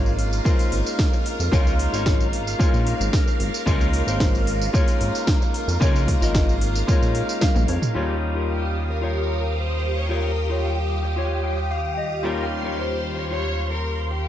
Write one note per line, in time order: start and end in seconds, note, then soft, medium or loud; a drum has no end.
0.00 0.40 G#1 loud
0.00 0.42 G#3 medium
0.00 0.42 A#3 medium
0.00 0.42 C#4 medium
0.00 0.42 D#4 medium
0.00 0.12 F4 medium
0.00 0.43 F4 loud
0.00 0.12 A#4 medium
0.00 7.91 A#4 medium
0.00 0.13 C#5 medium
0.00 7.91 F5 medium
0.06 tambourine soft
0.19 open hi-hat loud
0.33 tambourine medium
0.44 1.49 G#3 medium
0.44 1.49 A#3 medium
0.44 1.49 C#4 medium
0.44 1.50 D#4 medium
0.44 0.79 F4 medium
0.44 1.50 F4 medium
0.44 0.79 A#4 medium
0.44 0.80 C5 medium
0.44 kick loud
0.44 tambourine soft
0.59 open hi-hat medium
0.59 tambourine soft
0.72 0.83 G#1 medium
0.72 open hi-hat loud
0.86 tambourine medium
0.99 kick loud
0.99 snare loud
0.99 tambourine soft
1.12 muted clean electric guitar stroke medium
1.12 tambourine soft
1.25 muted clean electric guitar stroke soft
1.25 open hi-hat loud
1.40 1.50 F2 medium
1.40 tambourine medium
1.52 1.88 C#2 medium
1.52 2.56 G#3 medium
1.52 2.56 A#3 medium
1.52 2.57 C#4 medium
1.52 2.57 D#4 medium
1.52 1.72 F4 loud
1.52 2.57 F4 loud
1.52 1.73 A#4 loud
1.52 1.73 C#5 loud
1.52 kick loud
1.52 tambourine medium
1.67 tambourine soft
1.79 open hi-hat loud
1.92 2.55 G#1 medium
1.92 2.26 F4 medium
1.92 2.27 A#4 medium
1.92 2.27 C#5 medium
1.92 tambourine medium
2.06 kick loud
2.06 snare loud
2.06 tambourine medium
2.20 tambourine soft
2.33 open hi-hat loud
2.47 tambourine medium
2.59 3.63 G#3 medium
2.59 3.63 A#3 medium
2.59 3.64 C#4 medium
2.59 3.64 D#4 medium
2.59 2.93 F4 medium
2.59 3.64 F4 medium
2.59 2.93 A#4 medium
2.59 2.94 C#5 medium
2.59 kick loud
2.59 tambourine medium
2.73 2.94 A#1 medium
2.73 tambourine soft
2.87 open hi-hat loud
3.00 3.10 G#1 medium
3.00 tambourine medium
3.13 kick loud
3.13 snare loud
3.13 tambourine medium
3.26 muted clean electric guitar stroke medium
3.26 tambourine soft
3.39 3.50 G#1 medium
3.39 muted clean electric guitar stroke soft
3.39 open hi-hat medium
3.54 tambourine medium
3.66 4.02 C#2 loud
3.66 4.70 G#3 medium
3.66 4.70 A#3 medium
3.66 4.71 C#4 medium
3.66 4.71 D#4 medium
3.66 3.87 F4 loud
3.66 4.71 F4 loud
3.66 3.87 A#4 loud
3.66 3.88 C#5 loud
3.66 kick loud
3.66 tambourine medium
3.81 tambourine soft
3.93 open hi-hat loud
4.06 4.69 G#1 loud
4.06 4.40 F4 medium
4.06 4.41 A#4 medium
4.06 4.41 C5 medium
4.06 tambourine medium
4.20 kick loud
4.20 snare loud
4.20 tambourine medium
4.35 tambourine soft
4.47 open hi-hat loud
4.62 tambourine medium
4.73 5.77 G#3 medium
4.73 5.78 A#3 medium
4.73 5.78 C#4 medium
4.73 5.78 D#4 medium
4.73 5.07 F4 medium
4.73 5.78 F4 medium
4.73 5.08 A#4 medium
4.73 5.08 C#5 medium
4.73 kick loud
4.73 tambourine medium
4.88 open hi-hat medium
4.88 tambourine soft
5.01 5.11 G#1 medium
5.01 open hi-hat loud
5.15 tambourine medium
5.27 kick loud
5.27 snare loud
5.27 tambourine medium
5.40 muted clean electric guitar stroke medium
5.40 tambourine soft
5.54 muted clean electric guitar stroke soft
5.54 open hi-hat medium
5.68 5.78 F2 medium
5.68 tambourine medium
5.80 6.16 C#2 loud
5.80 6.85 G#3 medium
5.80 6.85 A#3 medium
5.80 6.85 C#4 medium
5.80 6.85 D#4 medium
5.80 6.01 F4 loud
5.80 6.86 F4 loud
5.80 6.02 A#4 loud
5.80 6.02 C#5 loud
5.80 kick loud
5.80 tambourine medium
5.96 tambourine soft
6.08 kick medium
6.08 open hi-hat loud
6.21 6.83 G#1 loud
6.21 6.55 F4 medium
6.21 6.55 A#4 medium
6.21 6.56 D#5 medium
6.21 tambourine medium
6.35 kick loud
6.35 snare loud
6.35 tambourine medium
6.49 tambourine soft
6.61 open hi-hat loud
6.76 tambourine medium
6.87 7.92 G#3 medium
6.87 7.92 A#3 medium
6.87 7.92 C#4 medium
6.87 7.92 D#4 medium
6.87 7.22 F4 medium
6.87 7.93 F4 medium
6.87 7.22 A#4 medium
6.87 7.23 C#5 medium
6.87 kick loud
6.87 tambourine medium
7.02 7.22 A#1 medium
7.02 tambourine soft
7.15 open hi-hat loud
7.29 tambourine medium
7.41 7.67 F5 medium
7.41 kick loud
7.41 snare loud
7.41 high tom medium
7.41 tambourine medium
7.55 7.66 A#1 medium
7.55 muted clean electric guitar stroke medium
7.55 high tom medium
7.55 tambourine soft
7.68 7.79 F2 loud
7.68 7.94 C#5 medium
7.68 muted clean electric guitar stroke soft
7.68 open hi-hat medium
7.82 mid tom medium
7.82 tambourine medium
7.94 14.28 D#2 medium
7.94 12.20 G3 medium
7.94 12.20 A#3 medium
7.94 12.21 C#4 medium
7.94 12.21 D#4 medium
7.94 8.15 F4 loud
7.94 12.21 F4 medium
7.94 8.16 G4 medium
7.94 14.28 G4 medium
7.94 8.16 C#5 loud
7.94 14.28 F5 medium
7.94 12.20 D#6 medium
8.35 8.62 F4 medium
8.35 8.63 G4 medium
8.35 8.63 A#4 medium
8.49 8.87 G4 medium
8.88 9.02 A#4 medium
8.88 muted clean electric guitar stroke medium
9.02 9.43 F4 medium
9.02 9.43 G4 medium
9.02 9.53 A#4 medium
9.02 9.44 C#5 medium
9.56 9.97 C5 medium
9.82 muted clean electric guitar stroke soft
9.97 10.10 C#5 medium
10.09 10.30 F4 loud
10.09 10.30 G4 medium
10.09 10.59 A#4 medium
10.09 10.31 C#5 loud
10.50 10.77 F4 medium
10.50 10.77 G4 medium
10.50 10.78 C#5 medium
10.63 11.70 G4 medium
11.03 muted clean electric guitar stroke medium
11.16 11.57 F4 medium
11.16 11.58 G4 medium
11.16 11.58 C#5 medium
11.44 11.69 G5 medium
11.71 11.96 F5 medium
11.97 12.22 D#5 medium
11.97 muted clean electric guitar stroke soft
12.23 14.28 G3 medium
12.23 14.28 A#3 medium
12.23 14.28 C#4 medium
12.23 14.28 D#4 medium
12.23 12.44 F4 loud
12.23 14.28 F4 medium
12.23 12.44 G4 medium
12.23 12.45 A#4 loud
12.23 14.28 C6 medium
12.64 12.91 F4 medium
12.64 12.91 G4 medium
12.64 12.92 C#5 medium
12.78 13.15 C5 loud
13.17 13.30 C#5 medium
13.17 muted clean electric guitar stroke medium
13.30 13.71 F4 medium
13.30 13.72 G4 medium
13.30 13.69 C#5 loud
13.30 13.72 C#5 medium
13.72 14.09 A#4 medium
14.11 14.28 G4 medium
14.11 muted clean electric guitar stroke soft